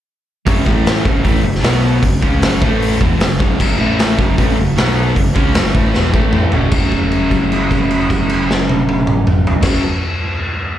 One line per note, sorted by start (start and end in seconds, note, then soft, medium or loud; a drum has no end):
0.46 0.65 F#1 medium
0.46 0.65 F#2 medium
0.46 0.64 C#3 medium
0.46 0.65 F#3 loud
0.46 kick loud
0.46 open hi-hat medium
0.65 1.02 A1 medium
0.65 1.04 A2 medium
0.65 1.04 E3 loud
0.65 1.04 A3 medium
0.65 kick medium
0.86 snare loud
0.86 open hi-hat medium
0.97 snare soft
1.03 1.23 F#1 medium
1.03 1.23 F#2 medium
1.03 1.23 C#3 medium
1.03 1.23 F#3 medium
1.03 kick loud
1.23 1.42 A1 medium
1.23 1.42 A2 medium
1.23 1.43 E3 loud
1.23 1.43 A3 loud
1.23 kick loud
1.23 open hi-hat medium
1.43 1.61 F#1 medium
1.43 1.59 F#2 medium
1.43 1.59 C#3 medium
1.55 snare soft
1.62 1.99 B1 medium
1.62 2.01 B2 medium
1.62 2.02 F#3 medium
1.62 2.02 B3 loud
1.62 snare loud
1.62 open hi-hat medium
2.03 2.21 F#1 medium
2.03 2.18 F#2 medium
2.03 2.19 C#3 medium
2.03 kick medium
2.03 open hi-hat medium
2.21 2.40 C#2 loud
2.21 2.41 C#3 medium
2.21 2.41 G#3 loud
2.21 2.41 C#4 loud
2.21 kick loud
2.40 2.59 F#1 medium
2.40 2.61 F#2 medium
2.40 2.61 C#3 loud
2.40 2.62 F#3 loud
2.40 snare loud
2.40 open hi-hat medium
2.61 2.98 A1 medium
2.61 3.00 A2 medium
2.61 3.00 E3 medium
2.61 3.00 A3 loud
2.61 kick loud
2.82 open hi-hat medium
3.00 3.18 E1 medium
3.00 3.19 E2 medium
3.00 3.20 B2 medium
3.00 3.20 E3 medium
3.00 kick loud
3.19 3.37 F#1 medium
3.19 3.35 F#2 medium
3.19 3.36 C#3 medium
3.19 snare loud
3.19 open hi-hat medium
3.38 3.58 F#1 medium
3.38 3.58 F#2 medium
3.38 3.58 C#3 medium
3.38 3.59 F#3 loud
3.38 kick loud
3.59 3.78 F#1 medium
3.59 3.78 F#2 loud
3.59 3.78 C#3 medium
3.59 3.79 F#3 loud
3.59 kick loud
3.59 crash loud
3.78 4.16 A1 medium
3.78 4.17 A2 medium
3.78 4.18 E3 loud
3.78 4.18 A3 loud
3.99 snare loud
3.99 open hi-hat medium
4.17 4.36 F#1 medium
4.17 4.36 F#2 medium
4.17 4.36 C#3 medium
4.17 4.37 F#3 loud
4.17 kick loud
4.37 4.56 A1 medium
4.37 4.56 A2 medium
4.37 4.57 E3 medium
4.37 4.57 A3 loud
4.37 kick loud
4.37 open hi-hat medium
4.56 4.76 F#1 medium
4.56 4.72 F#2 medium
4.56 4.76 C#3 medium
4.76 5.13 B1 medium
4.76 5.15 B2 medium
4.76 5.15 F#3 medium
4.76 5.15 B3 medium
4.76 snare loud
4.76 open hi-hat medium
5.15 5.34 F#1 medium
5.15 5.31 F#2 medium
5.15 5.32 C#3 medium
5.15 kick medium
5.15 open hi-hat medium
5.35 5.54 C#2 medium
5.35 5.54 C#3 medium
5.35 5.54 G#3 loud
5.35 5.55 C#4 loud
5.35 kick loud
5.54 5.74 F#1 medium
5.54 5.74 F#2 medium
5.54 5.74 C#3 medium
5.54 5.74 F#3 loud
5.54 snare loud
5.54 open hi-hat medium
5.66 snare soft
5.74 5.93 A1 medium
5.74 5.94 A2 medium
5.74 5.94 E3 medium
5.74 5.94 A3 medium
5.74 kick loud
5.94 6.13 E1 medium
5.94 6.13 E2 medium
5.94 6.12 B2 loud
5.94 6.11 E3 loud
5.94 snare medium
6.12 6.50 A1 medium
6.12 6.52 A2 medium
6.12 6.52 E3 medium
6.12 6.52 A3 loud
6.12 kick loud
6.33 mid tom medium
6.52 6.71 F#1 medium
6.52 6.70 F#2 medium
6.52 6.72 C#3 medium
6.52 6.72 F#3 medium
6.52 floor tom medium
6.71 9.54 F#1 medium
6.71 9.61 F#2 loud
6.71 9.63 C#3 loud
6.71 kick loud
6.71 crash medium
6.76 9.65 F#3 loud
6.91 kick medium
6.91 crash soft
7.12 crash soft
7.31 kick medium
7.31 crash soft
7.52 crash soft
7.71 kick medium
7.71 crash soft
7.91 crash soft
8.10 kick medium
8.10 crash soft
8.30 crash medium
8.51 snare medium
8.69 high tom medium
8.89 high tom loud
9.07 mid tom medium
9.27 mid tom medium
9.47 floor tom medium
9.61 9.79 F#1 medium
9.61 9.79 F#2 medium
9.61 9.81 C#3 medium
9.61 kick loud
9.61 snare loud
9.61 crash loud
9.65 9.81 F#3 loud